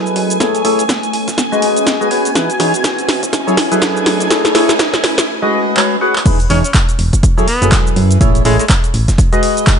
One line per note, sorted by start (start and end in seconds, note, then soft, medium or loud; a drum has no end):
0.00 0.38 F#3 medium
0.00 1.38 A3 medium
0.00 0.38 E4 medium
0.00 0.81 E4 medium
0.00 0.38 G#4 medium
0.00 0.38 A4 medium
0.00 0.38 B4 medium
0.00 5.28 G#5 medium
0.00 riser medium
0.06 shaker soft
0.16 0.37 F#2 loud
0.16 closed hi-hat medium
0.16 open hi-hat medium
0.30 closed hi-hat medium
0.30 shaker medium
0.40 0.61 A1 loud
0.40 0.62 A3 medium
0.40 1.79 C#4 medium
0.40 0.62 E4 medium
0.40 0.62 G#4 medium
0.40 0.62 A4 medium
0.40 0.62 C#5 loud
0.40 kick loud
0.40 snare medium
0.40 closed hi-hat medium
0.40 shaker medium
0.55 closed hi-hat soft
0.55 shaker soft
0.65 0.77 A1 loud
0.65 0.84 A3 loud
0.65 0.84 E4 medium
0.65 0.84 G#4 medium
0.65 0.84 A4 medium
0.65 0.84 C#5 loud
0.65 closed hi-hat medium
0.65 open hi-hat loud
0.79 closed hi-hat soft
0.79 closed hi-hat medium
0.79 shaker medium
0.89 kick loud
0.89 snare loud
0.89 snare medium
0.89 closed hi-hat medium
0.89 shaker medium
1.03 closed hi-hat soft
1.03 shaker soft
1.13 1.25 A1 medium
1.13 closed hi-hat medium
1.13 open hi-hat medium
1.28 kick medium
1.28 snare medium
1.28 closed hi-hat medium
1.28 shaker medium
1.38 2.76 F#4 medium
1.38 kick loud
1.38 snare medium
1.38 closed hi-hat medium
1.38 shaker medium
1.52 1.97 G#3 medium
1.52 1.97 F#4 medium
1.52 1.97 G#4 medium
1.52 1.97 B4 medium
1.52 1.97 D#5 loud
1.52 shaker soft
1.62 1.74 G#1 medium
1.62 closed hi-hat medium
1.62 open hi-hat loud
1.77 closed hi-hat medium
1.77 shaker medium
1.87 kick loud
1.87 snare loud
1.87 snare medium
1.87 closed hi-hat medium
1.87 shaker soft
2.01 2.09 G#3 medium
2.01 2.09 F#4 medium
2.01 2.09 G#4 medium
2.01 2.09 B4 medium
2.01 2.09 D#5 medium
2.01 shaker soft
2.11 2.30 F#4 medium
2.11 2.30 G#4 medium
2.11 2.30 B4 medium
2.11 2.30 C#5 medium
2.11 closed hi-hat medium
2.11 open hi-hat medium
2.25 closed hi-hat soft
2.25 closed hi-hat medium
2.25 shaker medium
2.35 2.49 E3 medium
2.35 2.49 D#4 medium
2.35 4.71 E4 medium
2.35 2.49 E4 medium
2.35 2.49 G#4 medium
2.35 2.49 B4 medium
2.35 kick loud
2.35 snare medium
2.35 closed hi-hat medium
2.35 shaker medium
2.50 closed hi-hat soft
2.50 shaker soft
2.60 2.72 E1 loud
2.60 2.73 E3 medium
2.60 2.73 D#4 medium
2.60 2.73 E4 medium
2.60 2.73 G#4 medium
2.60 2.73 C#5 medium
2.60 snare medium
2.60 closed hi-hat medium
2.60 open hi-hat loud
2.74 closed hi-hat medium
2.74 shaker medium
2.84 kick loud
2.84 snare loud
2.84 snare medium
2.84 closed hi-hat medium
2.84 shaker medium
2.98 closed hi-hat soft
2.98 shaker soft
3.09 3.21 E1 medium
3.09 snare medium
3.09 closed hi-hat medium
3.09 open hi-hat medium
3.23 kick medium
3.23 closed hi-hat medium
3.23 shaker medium
3.33 kick loud
3.33 snare medium
3.33 closed hi-hat medium
3.33 shaker medium
3.47 3.57 F#3 medium
3.47 3.57 E4 medium
3.47 3.57 G#4 medium
3.47 3.57 A4 medium
3.47 3.57 C#5 loud
3.47 shaker soft
3.57 snare medium
3.57 closed hi-hat medium
3.57 open hi-hat loud
3.72 3.80 F#1 medium
3.72 4.28 F#3 medium
3.72 4.28 E4 medium
3.72 4.28 G#4 medium
3.72 4.28 A4 medium
3.72 4.28 B4 loud
3.72 closed hi-hat medium
3.72 shaker medium
3.78 5.28 A3 medium
3.82 kick loud
3.82 snare loud
3.82 snare medium
3.82 closed hi-hat medium
3.82 shaker medium
3.97 shaker soft
4.06 4.27 F#2 loud
4.06 snare medium
4.06 closed hi-hat medium
4.06 open hi-hat loud
4.20 closed hi-hat medium
4.20 shaker medium
4.30 4.52 A3 medium
4.30 5.28 C#4 medium
4.30 4.52 E4 medium
4.30 4.53 G#4 medium
4.30 4.52 A4 medium
4.30 4.52 C#5 loud
4.30 kick loud
4.30 snare medium
4.30 snare loud
4.30 closed hi-hat medium
4.30 shaker medium
4.45 snare medium
4.45 closed hi-hat soft
4.45 shaker soft
4.55 4.67 A1 loud
4.55 4.74 A3 loud
4.55 4.74 E4 medium
4.55 4.74 G#4 medium
4.55 4.74 A4 medium
4.55 4.74 C#5 loud
4.55 snare medium
4.55 closed hi-hat medium
4.55 open hi-hat loud
4.69 snare medium
4.69 closed hi-hat soft
4.69 closed hi-hat medium
4.69 shaker medium
4.79 kick loud
4.79 snare loud
4.79 closed hi-hat medium
4.79 shaker medium
4.94 snare medium
4.94 closed hi-hat soft
4.94 shaker soft
5.04 5.16 A1 medium
5.04 snare loud
5.04 closed hi-hat medium
5.04 open hi-hat medium
5.18 kick medium
5.18 snare medium
5.18 closed hi-hat medium
5.18 shaker medium
5.42 5.75 G#3 medium
5.42 5.75 F#4 medium
5.42 5.75 G#4 medium
5.42 5.75 B4 medium
5.42 5.75 D#5 loud
5.77 5.96 G#3 medium
5.77 5.96 F#4 medium
5.77 5.96 G#4 medium
5.77 5.96 B4 medium
5.77 5.96 C#5 medium
5.77 clap loud
6.01 6.14 F#4 medium
6.01 6.14 G#4 medium
6.01 6.14 B4 medium
6.01 6.14 F#5 medium
6.16 clap medium
6.26 6.47 E1 loud
6.26 6.39 E3 medium
6.26 6.39 D#4 medium
6.26 6.39 E4 medium
6.26 6.39 G#4 medium
6.26 6.39 B4 medium
6.26 kick loud
6.26 closed hi-hat medium
6.26 crash loud
6.26 shaker medium
6.40 closed hi-hat soft
6.40 shaker soft
6.50 6.62 E1 loud
6.50 6.63 E3 medium
6.50 6.59 C#4 medium
6.50 6.63 D#4 medium
6.50 6.63 E4 medium
6.50 6.63 G#4 medium
6.50 6.63 C#5 medium
6.50 closed hi-hat medium
6.50 open hi-hat loud
6.64 6.71 C#4 medium
6.64 closed hi-hat medium
6.64 shaker medium
6.74 kick loud
6.74 snare loud
6.74 clap loud
6.74 closed hi-hat medium
6.74 shaker medium
6.89 closed hi-hat soft
6.89 shaker soft
6.99 7.11 E1 medium
6.99 closed hi-hat medium
6.99 open hi-hat medium
7.13 kick medium
7.13 closed hi-hat medium
7.13 shaker medium
7.23 kick loud
7.23 closed hi-hat medium
7.23 shaker medium
7.37 7.47 F#3 medium
7.37 7.47 E4 medium
7.37 7.47 G#4 medium
7.37 7.47 A4 medium
7.37 7.47 C#5 medium
7.37 shaker soft
7.48 7.68 B3 medium
7.48 closed hi-hat medium
7.48 open hi-hat loud
7.62 7.70 F#1 medium
7.62 8.18 F#3 medium
7.62 8.18 E4 medium
7.62 8.18 G#4 medium
7.62 8.18 A4 medium
7.62 8.18 B4 medium
7.62 closed hi-hat medium
7.62 shaker medium
7.72 kick loud
7.72 snare loud
7.72 clap loud
7.72 closed hi-hat medium
7.72 shaker medium
7.87 shaker soft
7.96 8.17 F#2 loud
7.96 closed hi-hat medium
7.96 open hi-hat medium
8.11 closed hi-hat medium
8.11 shaker medium
8.21 8.42 A1 loud
8.21 8.43 A3 medium
8.21 8.43 E4 medium
8.21 8.43 G#4 medium
8.21 8.43 A4 medium
8.21 8.43 C#5 loud
8.21 kick loud
8.21 closed hi-hat medium
8.21 shaker medium
8.35 closed hi-hat soft
8.35 shaker soft
8.45 8.57 A1 loud
8.45 8.54 G#3 medium
8.45 8.64 A3 loud
8.45 8.64 E4 medium
8.45 8.64 G#4 medium
8.45 8.64 A4 medium
8.45 8.64 C#5 loud
8.45 closed hi-hat medium
8.45 open hi-hat loud
8.59 8.66 G#3 medium
8.59 closed hi-hat medium
8.59 closed hi-hat soft
8.59 shaker medium
8.70 kick loud
8.70 snare loud
8.70 clap loud
8.70 closed hi-hat medium
8.70 shaker medium
8.84 closed hi-hat soft
8.84 shaker soft
8.94 9.06 A1 medium
8.94 closed hi-hat medium
8.94 open hi-hat medium
9.08 kick medium
9.08 snare medium
9.08 closed hi-hat medium
9.08 shaker medium
9.18 kick loud
9.18 closed hi-hat medium
9.18 shaker medium
9.33 9.78 G#3 medium
9.33 9.78 F#4 medium
9.33 9.78 G#4 medium
9.33 9.78 B4 medium
9.33 9.78 D#5 loud
9.33 closed hi-hat soft
9.33 shaker soft
9.43 closed hi-hat medium
9.43 open hi-hat loud
9.57 closed hi-hat medium
9.57 shaker medium
9.67 kick loud
9.67 snare loud
9.67 clap loud
9.67 closed hi-hat medium
9.67 shaker medium